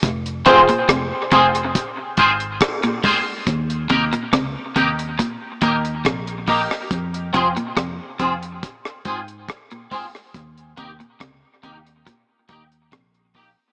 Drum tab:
HH |xxxxx-xxx-xxxxo-|xxxxx-xxx-xxxxo-|xxxxx-xxx-xxxxo-|xxxxx-xxx-xxxxo-|
SD |----r-------r---|----r-------r--r|----r----r--r--r|----r-------r---|
BD |o-o-o-o-o-o-o-o-|o-o-o-o-o-o-o-o-|o-o-o-o-o-o-o-o-|o-o-o-o-o-o-o-o-|